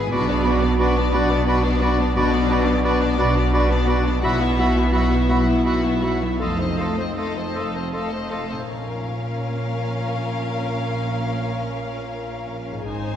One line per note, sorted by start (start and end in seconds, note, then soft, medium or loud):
0.00 0.15 G#2 medium
0.00 0.14 G#3 medium
0.00 0.12 B3 medium
0.00 0.27 B3 medium
0.00 0.14 E4 medium
0.00 0.12 G#4 medium
0.00 0.14 G#4 medium
0.00 0.12 B4 medium
0.00 0.78 B4 medium
0.00 0.14 E5 medium
0.00 0.14 G#5 medium
0.11 1.01 B1 loud
0.11 1.01 B2 medium
0.11 2.15 B2 medium
0.11 4.20 B3 medium
0.11 0.27 D4 medium
0.11 4.20 D4 medium
0.11 0.27 F#4 medium
0.11 0.28 F#4 medium
0.11 0.28 B4 medium
0.11 0.27 D5 medium
0.11 0.19 B5 medium
0.28 1.97 B3 medium
0.28 0.45 B3 medium
0.28 0.45 D4 medium
0.28 0.46 D5 medium
0.44 1.80 D4 medium
0.44 0.62 D4 medium
0.44 0.61 F#4 medium
0.44 0.63 F#4 medium
0.44 0.62 B4 medium
0.44 0.61 D5 medium
0.44 0.52 B5 medium
0.62 0.79 B3 medium
0.62 0.79 D4 medium
0.62 1.63 F#4 medium
0.62 0.79 D5 medium
0.79 0.95 D4 medium
0.79 0.95 F#4 medium
0.79 0.95 B4 medium
0.79 1.46 B4 medium
0.79 0.96 D5 medium
0.79 0.87 B5 medium
0.96 1.13 B3 medium
0.96 1.13 D4 medium
0.96 1.29 D5 medium
0.96 1.14 D5 medium
1.12 2.04 B1 medium
1.12 2.03 B2 medium
1.12 1.31 D4 medium
1.12 1.30 F#4 medium
1.12 1.30 B4 medium
1.12 1.29 D5 medium
1.12 3.17 F#5 medium
1.12 1.21 B5 medium
1.29 1.47 B3 medium
1.29 1.47 D4 medium
1.29 1.47 D5 medium
1.29 3.00 D5 medium
1.47 1.63 D4 medium
1.47 1.63 F#4 medium
1.47 1.63 B4 medium
1.47 2.83 B4 medium
1.47 1.63 D5 medium
1.47 1.56 B5 medium
1.64 1.81 B3 medium
1.64 1.82 D4 medium
1.64 2.66 F#4 medium
1.64 1.81 D5 medium
1.80 1.98 D4 medium
1.80 2.49 D4 medium
1.80 1.97 F#4 medium
1.80 1.99 F#4 medium
1.80 1.98 B4 medium
1.80 1.98 D5 medium
1.80 1.91 B5 medium
1.98 2.15 B3 medium
1.98 4.06 B3 medium
1.98 2.16 D4 medium
1.98 2.16 D5 medium
2.15 3.06 B1 medium
2.15 3.06 B2 loud
2.15 4.23 B2 medium
2.15 2.31 D4 medium
2.15 2.32 F#4 medium
2.15 2.31 F#4 medium
2.15 2.32 B4 medium
2.15 2.32 D5 medium
2.15 2.25 B5 medium
2.32 6.23 F#3 medium
2.32 2.49 B3 medium
2.32 2.50 D4 medium
2.32 2.50 D5 medium
2.48 2.66 D4 medium
2.48 3.88 D4 medium
2.48 2.65 F#4 medium
2.48 2.67 F#4 medium
2.48 2.66 B4 medium
2.48 2.66 D5 medium
2.48 2.58 B5 medium
2.65 2.83 B3 medium
2.65 2.83 D4 medium
2.65 3.71 F#4 medium
2.65 2.83 D5 medium
2.82 2.99 D4 medium
2.82 3.00 F#4 medium
2.82 3.52 B4 medium
2.82 3.00 B4 medium
2.82 3.00 D5 medium
2.82 2.92 B5 medium
3.00 3.18 B3 medium
3.00 3.18 D4 medium
3.00 3.35 D5 medium
3.00 3.19 D5 medium
3.17 4.11 B1 medium
3.17 4.11 B2 medium
3.17 3.35 D4 medium
3.17 3.34 F#4 medium
3.17 3.36 F#4 medium
3.17 3.36 B4 medium
3.17 3.35 D5 medium
3.17 5.29 F#5 medium
3.17 3.28 B5 medium
3.35 3.53 B3 medium
3.35 3.53 D4 medium
3.35 4.27 D5 medium
3.35 3.54 D5 medium
3.52 3.69 D4 medium
3.52 3.69 F#4 medium
3.52 3.70 F#4 medium
3.52 4.93 B4 medium
3.52 3.70 B4 medium
3.52 3.70 D5 medium
3.52 3.62 B5 medium
3.69 3.88 B3 medium
3.69 3.88 D4 medium
3.69 4.76 F#4 medium
3.69 3.89 D5 medium
3.87 4.05 D4 medium
3.87 4.27 D4 medium
3.87 4.03 F#4 medium
3.87 4.06 F#4 medium
3.87 4.06 B4 medium
3.87 4.05 D5 medium
3.87 3.97 B5 medium
4.05 4.23 B3 medium
4.05 4.41 B3 medium
4.05 4.23 D4 medium
4.05 4.23 D5 medium
4.22 5.17 B1 medium
4.22 5.17 B2 loud
4.22 6.45 B2 medium
4.22 4.39 F#3 medium
4.22 6.37 B3 medium
4.22 6.37 E4 medium
4.22 4.39 F#4 medium
4.22 4.40 F#4 medium
4.22 4.40 E5 medium
4.22 4.40 F#5 medium
4.22 4.32 B5 medium
4.40 4.58 B3 medium
4.40 6.22 B3 medium
4.40 4.59 E4 medium
4.40 4.59 E5 medium
4.57 4.76 F#3 medium
4.57 6.03 E4 medium
4.57 4.73 F#4 medium
4.57 4.77 F#4 medium
4.57 4.76 E5 medium
4.57 4.76 F#5 medium
4.57 4.67 B5 medium
4.75 4.94 B3 medium
4.75 4.94 E4 medium
4.75 5.84 F#4 medium
4.75 4.94 E5 medium
4.92 5.10 F#3 medium
4.92 5.08 F#4 medium
4.92 5.11 F#4 medium
4.92 5.66 B4 medium
4.92 5.11 E5 medium
4.92 5.10 F#5 medium
4.92 5.01 B5 medium
5.12 5.30 B3 medium
5.12 5.30 E4 medium
5.12 5.30 E5 medium
5.12 5.48 E5 medium
5.29 6.28 B1 medium
5.29 6.28 B2 medium
5.29 5.47 F#3 medium
5.29 5.45 F#4 medium
5.29 5.48 F#4 medium
5.29 5.46 E5 medium
5.29 5.48 F#5 medium
5.29 6.45 F#5 medium
5.29 5.38 B5 medium
5.47 5.66 B3 medium
5.47 5.67 E4 medium
5.47 5.67 E5 medium
5.47 6.45 E5 medium
5.65 5.83 F#3 medium
5.65 5.81 F#4 medium
5.65 5.83 F#4 medium
5.65 6.45 B4 medium
5.65 5.82 E5 medium
5.65 5.83 F#5 medium
5.65 5.74 B5 medium
5.84 6.03 B3 medium
5.84 6.04 E4 medium
5.84 6.45 F#4 medium
5.84 6.04 E5 medium
6.01 6.22 F#3 medium
6.01 6.45 E4 medium
6.01 6.17 F#4 medium
6.01 6.22 F#4 soft
6.01 6.20 E5 medium
6.01 6.22 F#5 medium
6.01 6.11 B5 soft
6.22 6.41 B3 soft
6.22 6.45 B3 soft
6.22 6.42 E4 medium
6.22 6.42 E5 soft
6.39 7.43 F1 medium
6.39 7.43 F2 medium
6.39 10.32 F3 medium
6.39 6.59 A3 medium
6.39 8.36 A3 medium
6.39 8.35 D#4 medium
6.39 6.55 A4 medium
6.39 6.59 A4 medium
6.39 6.58 D#5 medium
6.39 6.58 F5 medium
6.39 6.50 C6 medium
6.59 6.80 C4 soft
6.59 8.51 D#4 soft
6.59 6.80 C5 soft
6.59 6.79 D#5 soft
6.78 6.99 A3 medium
6.78 6.94 A4 soft
6.78 6.99 A4 soft
6.78 8.31 A4 soft
6.78 6.96 D#5 medium
6.78 6.99 F5 soft
6.78 6.89 C6 soft
6.98 7.19 C4 soft
6.98 7.18 C5 soft
6.98 8.12 C5 soft
6.98 7.18 D#5 soft
7.16 7.36 A3 soft
7.16 7.32 A4 soft
7.16 7.36 A4 soft
7.16 7.34 D#5 soft
7.16 7.93 D#5 soft
7.16 7.35 F5 medium
7.16 7.27 C6 soft
7.36 7.56 C4 soft
7.36 7.56 C5 soft
7.36 7.56 D#5 soft
7.36 7.74 A5 soft
7.55 8.56 F1 medium
7.55 8.56 F2 medium
7.55 7.75 A3 soft
7.55 7.71 A4 soft
7.55 7.75 A4 soft
7.55 7.71 D#5 medium
7.55 7.75 F5 soft
7.55 7.65 C6 medium
7.55 8.72 C6 medium
7.74 7.94 C4 soft
7.74 7.94 C5 soft
7.74 7.94 D#5 soft
7.74 8.72 A5 soft
7.92 8.12 A3 soft
7.92 8.08 A4 soft
7.92 8.11 A4 soft
7.92 8.10 D#5 soft
7.92 8.72 D#5 soft
7.92 8.12 F5 soft
7.92 8.02 C6 soft
8.12 8.32 C4 soft
8.12 8.32 C5 soft
8.12 8.72 C5 soft
8.12 8.32 D#5 soft
8.31 8.51 A3 soft
8.31 8.47 A4 soft
8.31 8.51 A4 soft
8.31 8.72 A4 soft
8.31 8.48 D#5 soft
8.31 8.50 F5 soft
8.31 8.40 C6 soft
8.49 12.42 A#2 soft
8.49 8.69 C4 soft
8.49 8.72 D#4 soft
8.49 8.69 C5 soft
8.49 8.68 D#5 soft
8.56 12.46 C#4 soft
8.61 12.51 F4 soft
8.65 12.85 A#1 medium
8.65 12.85 A#2 medium
8.65 12.55 A#4 soft
8.65 12.84 A#4 medium
8.65 12.84 F5 medium
8.70 12.85 C#4 medium
12.71 13.16 G#2 soft
12.75 13.16 D#4 soft
12.80 13.16 G#4 soft
12.85 13.16 D#4 medium
12.85 13.16 C5 soft
12.89 13.16 G#1 medium
12.89 13.16 G#2 medium
12.89 13.16 C5 soft
12.89 13.16 G#5 medium